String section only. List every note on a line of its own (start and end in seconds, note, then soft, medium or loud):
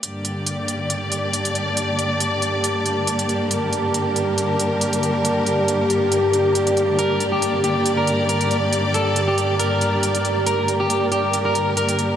0.03 12.16 G2 medium
0.03 12.16 D3 medium
0.03 12.16 A#3 medium
0.03 12.16 G4 medium
0.03 3.50 D5 medium
3.51 6.97 A#4 medium
6.99 10.45 D5 medium
10.47 12.16 A#4 medium